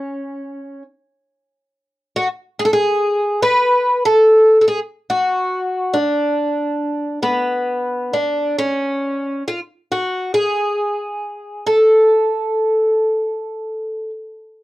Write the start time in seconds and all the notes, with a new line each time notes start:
Already playing: C#4
2.16 F#4
2.59 G#4
2.65 A4
2.73 G#4
3.42 B4
4.05 A4
4.61 A4
4.68 G#4
5.10 F#4
5.94 D4
7.23 B3
8.13 D4
8.58 C#4
9.48 F4
9.92 F#4
10.34 G#4
11.67 A4